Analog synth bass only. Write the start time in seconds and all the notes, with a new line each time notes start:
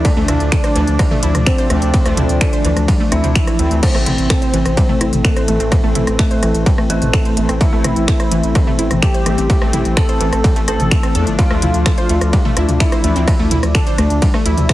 0.17 D2
0.28 D2
0.40 D2
0.76 D2
0.88 D2
1.23 D2
1.35 D2
1.70 D2
1.82 D2
2.06 D2
2.17 D2
2.29 D2
2.65 D2
2.77 D2
3.12 D2
3.24 D2
3.59 D2
3.71 D2
3.95 A1
4.07 A1
4.18 A1
4.54 A1
4.66 A1
5.01 A1
5.13 A1
5.48 A1
5.60 A1
5.84 A1
5.95 A1
6.07 A1
6.43 A1
6.55 A1
6.90 A1
7.02 A1
7.37 A1
7.49 A1
7.73 A1
7.84 A1
7.96 A1
8.32 A1
8.44 A1
8.79 A1
8.91 A1
9.26 A1
9.38 A1
9.62 A1
9.73 A1
9.85 A1
10.21 A1
10.33 A1
10.68 A1
10.80 A1
11.15 E2
11.27 G1
11.51 D2
11.62 D2
11.74 D2
12.10 D2
12.21 D2
12.57 D2
12.69 D2
13.04 D2
13.16 D2
13.40 D2
13.51 D2
13.63 D2
13.98 D2
14.10 D2
14.46 D2
14.58 D2